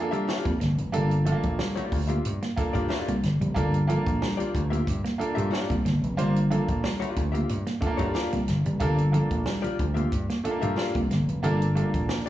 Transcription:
Already playing: upright piano A#3 D4 F4
0.02 upright piano A4
0.11 clean electric guitar G3, hollow-body jazz guitar A#3 F4 G4 E5, closed hi-hat
0.27 hollow-body jazz guitar A#3 F4 G4 D5, muted clean electric guitar stroke, snare
0.45 slap bass F2, clean electric guitar A#3, kick, closed hi-hat
0.60 slap bass G1, clean electric guitar A#3, snare, closed hi-hat
0.78 slap bass F1, closed hi-hat
0.92 slap bass G1, clean electric guitar G3, upright piano A#3 D4 F4 A4, closed hi-hat
1.11 closed hi-hat
1.25 clean electric guitar F3, upright piano A3 D4 F4 A4, closed hi-hat
1.32 upright piano A#3
1.43 slap bass A#1, muted clean electric guitar stroke, kick, closed hi-hat
1.59 clean electric guitar G3, snare
1.76 hollow-body jazz guitar A#3 F4 G4 D5, muted slap bass stroke, muted clean electric guitar stroke, closed hi-hat
1.92 slap bass D2, kick, open hi-hat
2.07 hollow-body jazz guitar A#3 F4 G4 E5, clean electric guitar A#3, closed hi-hat
2.25 slap bass G2, closed hi-hat
2.42 clean electric guitar A#3, snare, closed hi-hat
2.56 upright piano A#3 D4 F4 A4, muted slap bass stroke, muted clean electric guitar stroke, kick, closed hi-hat
2.73 slap bass G2, clean electric guitar G3, hollow-body jazz guitar A#3 F4 G4 D5, kick, closed hi-hat
2.88 hollow-body jazz guitar A#3 F4 G4 D5, snare
3.08 slap bass C2, clean electric guitar A#3, closed hi-hat
3.23 slap bass G1, muted clean electric guitar stroke, snare, closed hi-hat
3.41 slap bass F1, clean electric guitar G3, closed hi-hat
3.54 slap bass G1, clean electric guitar G3, upright piano A#3 D4 F4 A4, kick, closed hi-hat
3.74 closed hi-hat
3.87 clean electric guitar F3, upright piano A#3 D4 F4 A4, closed hi-hat
4.06 slap bass A#1, muted clean electric guitar stroke, kick, closed hi-hat
4.22 clean electric guitar G3, snare
4.37 hollow-body jazz guitar A#3 F4 G4 D5, muted slap bass stroke, muted clean electric guitar stroke, closed hi-hat
4.55 slap bass D2, kick, closed hi-hat
4.70 hollow-body jazz guitar A#3 F4 G4 E5, clean electric guitar A#3, closed hi-hat
4.87 slap bass G2, kick, closed hi-hat
5.05 clean electric guitar A#3, snare, closed hi-hat
5.18 upright piano A#3 D4 F4 A4, muted clean electric guitar stroke, muted slap bass stroke, closed hi-hat
5.35 slap bass G2, clean electric guitar G3, hollow-body jazz guitar A#3 F4 G4 E5, closed hi-hat
5.50 hollow-body jazz guitar A#3 F4 G4 D5, muted clean electric guitar stroke, snare
5.70 slap bass C2, clean electric guitar A#3, kick, closed hi-hat
5.85 slap bass G1, clean electric guitar A#3, snare, closed hi-hat
6.03 slap bass F1, closed hi-hat
6.17 slap bass G1, clean electric guitar G3, upright piano A#3 D4 F4 C5, closed hi-hat
6.36 closed hi-hat
6.50 clean electric guitar F3, upright piano A#3 D4 F4 A4, closed hi-hat
6.68 slap bass A#1, muted clean electric guitar stroke, kick, closed hi-hat
6.84 clean electric guitar G3, snare
7.00 hollow-body jazz guitar A#3 F4 G4 D5, muted slap bass stroke, muted clean electric guitar stroke, closed hi-hat
7.16 slap bass D2, kick, closed hi-hat
7.32 hollow-body jazz guitar A#3 F4 G4 E5, clean electric guitar A#3, closed hi-hat
7.49 slap bass G2, closed hi-hat
7.67 clean electric guitar A#3, snare, closed hi-hat
7.81 upright piano A3 D4 F4 A4, muted clean electric guitar stroke, muted slap bass stroke, kick, closed hi-hat
7.87 upright piano A#3
7.97 slap bass G2, clean electric guitar G3, hollow-body jazz guitar A#3 F4 G4 D5, kick, closed hi-hat
8.14 hollow-body jazz guitar A#3 F4 G4 D5, snare
8.33 slap bass C2, clean electric guitar A#3, closed hi-hat
8.48 slap bass G1, muted clean electric guitar stroke, snare, closed hi-hat
8.66 slap bass F1, clean electric guitar G3, closed hi-hat
8.80 slap bass G1, clean electric guitar G3, upright piano A#3 D4 F4 A4, kick, closed hi-hat
8.98 closed hi-hat
9.12 clean electric guitar F3, upright piano A#3 D4 F4 A4, closed hi-hat
9.31 slap bass A#1, muted clean electric guitar stroke, kick, closed hi-hat
9.46 clean electric guitar G3, snare
9.62 hollow-body jazz guitar A#3 F4 G4 D5, muted clean electric guitar stroke, muted slap bass stroke, closed hi-hat
9.79 slap bass D2, kick, closed hi-hat
9.94 hollow-body jazz guitar A#3 F4 G4 E5, clean electric guitar A#3, closed hi-hat
10.12 slap bass G2, kick, closed hi-hat
10.30 clean electric guitar A#3, snare, closed hi-hat
10.44 upright piano A3 D4 F4 A4, muted slap bass stroke, muted clean electric guitar stroke, closed hi-hat
10.50 upright piano A#3
10.61 slap bass G2, clean electric guitar G3, hollow-body jazz guitar A#3 F4 G4 E5, closed hi-hat
10.76 hollow-body jazz guitar A#3 F4 G4 D5, muted clean electric guitar stroke, snare
10.95 slap bass C2, clean electric guitar A#3, kick, closed hi-hat
11.11 slap bass G1, clean electric guitar A#3, snare, closed hi-hat
11.28 slap bass F1, closed hi-hat
11.43 slap bass G1, clean electric guitar G3, upright piano A#3 D4 F4 A4, closed hi-hat
11.62 closed hi-hat
11.75 clean electric guitar G3, upright piano A3 D4 F4 A4, closed hi-hat
11.82 upright piano A#3
11.94 slap bass A#1, muted clean electric guitar stroke, kick, closed hi-hat
12.09 clean electric guitar A#3, snare
12.26 hollow-body jazz guitar D5

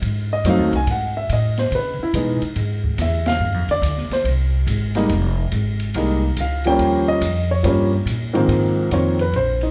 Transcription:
0.02 upright bass G#2, ride
0.33 upright piano D#5
0.44 upright bass F#2, upright piano F#3 A3 C4 D#4, hi-hat pedal, ride
0.49 upright piano F5
0.59 upright bass D#2
0.72 upright bass C2, upright piano G#5, ride
0.87 upright bass G#2, ride
0.91 upright piano F#5
1.17 upright piano E5
1.29 upright bass A2, upright piano D#5, hi-hat pedal, ride
1.57 upright piano C5, snare, ride
1.72 upright bass C#3, upright piano B4, ride
1.99 upright piano E4, muted upright bass stroke
2.13 upright bass B2, upright piano E3 G#3 B3 D#4, hi-hat pedal, ride
2.42 muted upright bass stroke, ride
2.56 upright bass G#2, ride
2.84 kick
2.98 upright bass E2, upright piano E5, snare, hi-hat pedal, ride
3.26 upright piano F5, snare, ride
3.40 upright bass G2
3.54 upright bass F2
3.68 upright bass D2, upright piano D5, ride
3.82 upright bass D2, hi-hat pedal, ride
3.98 snare
4.10 upright piano C5, muted upright bass stroke, snare, ride
4.24 upright bass C2, ride
4.67 upright bass G#1, hi-hat pedal, ride
4.95 upright piano G3 G#3 A#3 D#4, snare, ride
5.09 upright bass F1, ride
5.52 upright bass G#1, hi-hat pedal, ride
5.80 ride
5.94 upright bass C2, upright piano G3 G#3 A#3 D#4, ride
6.37 upright bass C#2, upright piano F5, hi-hat pedal, ride
6.64 upright piano F3 G3 A#3 C#4 G5, ride
6.79 upright bass D#2, ride
7.08 upright piano D#5
7.21 upright bass F2, hi-hat pedal, ride
7.51 upright piano C#5
7.63 upright bass G2, upright piano F3 G3 A#3 C#4, ride
8.06 upright bass A#2, hi-hat pedal, ride
8.33 upright piano G#2 D#3 F3 A#3 C4, ride
8.48 upright bass G#2, ride
8.91 upright bass F2, upright piano D#3 F3 A#3 C4 C#5, hi-hat pedal, ride
9.19 upright piano B4, ride
9.32 upright bass A#1, upright piano C5, ride
9.61 upright piano D#4, ride

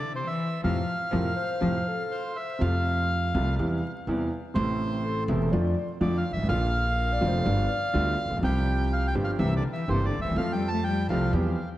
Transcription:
Already playing: cello D3, bandoneon D5
0.14 cello C3, bandoneon C5
0.26 cello E3, bandoneon E5
0.62 upright bass F2, grand piano A2 C3 F3, cello F3, bandoneon F5
1.11 upright bass F2, grand piano A2 C3 F3, cello F3, clarinet A#4
1.36 clarinet C5
1.61 upright bass F2, grand piano A2 C3 F3, cello F3
1.88 clarinet A4
2.11 bandoneon C5
2.26 clarinet A4
2.36 clarinet C5, bandoneon E5
2.59 grand piano F2 C3 F3 A3, upright bass F2, bandoneon F5
2.63 grand piano F4
3.34 upright bass C2, grand piano C2 C3 F3 A3 F4
3.59 upright bass E2, grand piano E2 C3 E3 G3 E4
4.07 upright bass E2, grand piano E2 C3 E3 G3 E4
4.54 upright bass A1, grand piano A1 A2 C3 E3 A3 E4, bandoneon C5
5.04 clarinet A4
5.28 upright bass E1, grand piano E1 E2 C3 E3 A3 E4
5.52 upright bass F2, grand piano F2 D3 F3 A3 F4, clarinet D5
6.00 grand piano F2 D3 F3 A3 F4, upright bass F2, bandoneon D5
6.18 bandoneon F5
6.31 grand piano G1, upright bass G1, bandoneon E5
6.37 grand piano G#1, upright bass G#1
6.42 grand piano A1, upright bass A1
6.47 grand piano A#1 A#2 D3 F3 A#3, upright bass A#1, bandoneon F5
6.51 grand piano F4
6.97 clarinet A#4
7.12 clarinet D5
7.21 grand piano F1 F2 D3 F3 A#3 F4, upright bass F1
7.28 clarinet C5
7.45 grand piano G1 G2 D3 G3 B3 F4, upright bass G1, clarinet D5
7.93 grand piano D2 D3 G3 B3 F4, upright bass D2
8.25 grand piano A1, upright bass A1
8.30 grand piano A#1, upright bass A#1
8.37 grand piano B1, upright bass B1
8.41 upright bass C2, grand piano C2 C3 F3 G3 C4 G4, bandoneon G5
8.93 bandoneon F5
9.08 bandoneon G5
9.14 grand piano G1 G2 F3 G3 C4 G4, upright bass G1
9.24 bandoneon F5
9.39 upright bass C2, grand piano C2 C3 E3 A#3 C4 G4, cello E3, bandoneon E5
9.56 cello D3, bandoneon D5
9.73 cello E3, bandoneon E5
9.88 upright bass G1, grand piano G1 G2 E3 A#3 C4 G4, cello C3, bandoneon C5
10.05 cello D3, bandoneon D5
10.18 upright bass D2, grand piano D2, cello E3, bandoneon E5
10.24 upright bass D#2, grand piano D#2
10.30 upright bass E2, grand piano E2
10.36 upright bass F2, grand piano F2 F3 A3 C4 A4, cello F3, bandoneon F5
10.52 cello G3, bandoneon G5
10.68 cello A3, bandoneon A5
10.84 cello G3, bandoneon G5
11.09 upright bass C2, grand piano C2 C3 F3 A3 C4 A4, cello F3, bandoneon F5
11.33 upright bass E2, grand piano E2 E3 G3 C4 G4

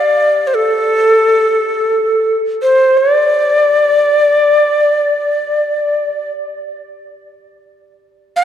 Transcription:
Already playing: singing bowl G4, native american-style wooden flute D5
0.47 native american-style wooden flute C5
0.54 native american-style wooden flute A4
2.62 native american-style wooden flute C5
2.98 native american-style wooden flute D5
8.36 native american-style wooden flute F5

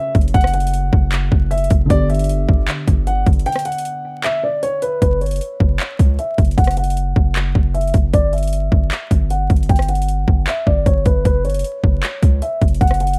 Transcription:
Already playing: felt piano C#3 A3 F#4 C#5, grand piano E5
0.15 808-style bass F#1, kick, closed hi-hat
0.21 closed hi-hat
0.28 closed hi-hat
0.34 808-style bass F#1, grand piano F#5, kick, closed hi-hat
0.41 cross-stick, closed hi-hat
0.47 closed hi-hat
0.53 grand piano F#5, closed hi-hat, open hi-hat
0.60 closed hi-hat
0.67 closed hi-hat
0.74 closed hi-hat
0.93 808-style bass F#1, kick
1.12 clap, closed hi-hat
1.32 808-style bass F#1, kick
1.51 grand piano E5, closed hi-hat
1.58 closed hi-hat
1.64 closed hi-hat
1.70 808-style bass F#1, kick, closed hi-hat
1.86 felt piano D3 B3
1.90 808-style bass G1, felt piano G4, grand piano D5, kick, closed hi-hat
1.95 felt piano D5
2.10 grand piano E5, closed hi-hat
2.14 closed hi-hat
2.19 closed hi-hat
2.24 closed hi-hat
2.29 closed hi-hat
2.49 808-style bass G1, kick
2.68 clap, closed hi-hat
2.88 808-style bass G1, kick, closed hi-hat
3.07 grand piano F#5, closed hi-hat
3.26 808-style bass G1, kick, closed hi-hat
3.33 closed hi-hat
3.39 closed hi-hat
3.46 grand piano G5, closed hi-hat
3.52 cross-stick, closed hi-hat
3.59 closed hi-hat
3.65 grand piano F#5, closed hi-hat, open hi-hat
3.72 closed hi-hat
3.78 closed hi-hat
3.85 closed hi-hat
4.24 grand piano E5, clap, closed hi-hat
4.43 grand piano D5
4.63 grand piano C#5, closed hi-hat
4.82 grand piano B4, closed hi-hat
5.02 808-style bass F#1, grand piano B4, kick, closed hi-hat
5.21 808-style bass G1, grand piano C#5, closed hi-hat
5.26 closed hi-hat
5.31 808-style bass F#1, closed hi-hat
5.36 closed hi-hat
5.41 closed hi-hat
5.60 808-style bass F#1, kick
5.80 clap, closed hi-hat
5.99 808-style bass C#2, kick, closed hi-hat
6.19 grand piano E5, closed hi-hat
6.38 808-style bass F#1, kick, closed hi-hat
6.45 closed hi-hat
6.51 closed hi-hat
6.58 808-style bass F#1, grand piano F#5, kick, closed hi-hat
6.64 cross-stick, closed hi-hat
6.71 closed hi-hat
6.77 closed hi-hat, open hi-hat
6.84 closed hi-hat
6.90 closed hi-hat
6.97 closed hi-hat
7.16 808-style bass F#1, kick
7.36 clap, closed hi-hat
7.55 808-style bass F#1, kick
7.74 grand piano E5, closed hi-hat
7.81 closed hi-hat
7.87 closed hi-hat
7.94 808-style bass F#1, kick, closed hi-hat
8.13 808-style bass G1, grand piano D5, kick, closed hi-hat
8.33 grand piano E5, closed hi-hat
8.38 closed hi-hat
8.43 closed hi-hat
8.48 closed hi-hat
8.53 closed hi-hat
8.72 808-style bass G1, kick
8.91 clap, closed hi-hat
9.11 808-style bass G1, kick, closed hi-hat
9.30 grand piano F#5, closed hi-hat
9.50 808-style bass G1, kick, closed hi-hat
9.56 closed hi-hat
9.63 closed hi-hat
9.69 808-style bass G1, grand piano G5, kick, closed hi-hat
9.76 cross-stick, closed hi-hat
9.82 closed hi-hat
9.88 grand piano F#5, closed hi-hat, open hi-hat
9.95 closed hi-hat
10.02 closed hi-hat
10.08 closed hi-hat
10.28 808-style bass G1, kick
10.47 grand piano E5, clap, closed hi-hat
10.67 808-style bass G1, grand piano D5, kick
10.86 808-style bass G1, grand piano C#5, kick, closed hi-hat
11.05 808-style bass G1, grand piano B4, kick, closed hi-hat
11.25 808-style bass F#1, grand piano B4, kick, closed hi-hat
11.45 808-style bass G1, grand piano C#5, closed hi-hat
11.50 closed hi-hat
11.54 808-style bass F#1, closed hi-hat
11.59 closed hi-hat
11.64 closed hi-hat
11.84 808-style bass F#1, kick
12.03 clap, closed hi-hat
12.23 808-style bass C#2, kick, closed hi-hat
12.42 grand piano E5, closed hi-hat
12.61 808-style bass F#1, kick, closed hi-hat
12.68 closed hi-hat
12.74 closed hi-hat
12.81 808-style bass F#1, grand piano F#5, kick, closed hi-hat
12.87 cross-stick, closed hi-hat
12.94 closed hi-hat
13.00 grand piano F#5, closed hi-hat, open hi-hat
13.07 closed hi-hat
13.13 closed hi-hat

